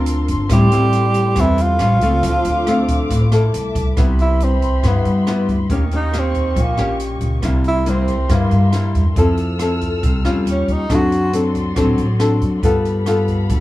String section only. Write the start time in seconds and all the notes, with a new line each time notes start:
Already playing: A#4 F5 A5 C6
0.49 A4 G5
1.80 G4 F5 C#6
2.23 C5 D6
3.54 E5 A5 D6
3.97 E5 B5 C6
5.69 G4 D#5 C#6
7.43 A#4 E5 C6
9.16 A4 E6 F6
10.46 G4 C#6
10.88 F#4 D5 C6
12.61 A4 F5 B5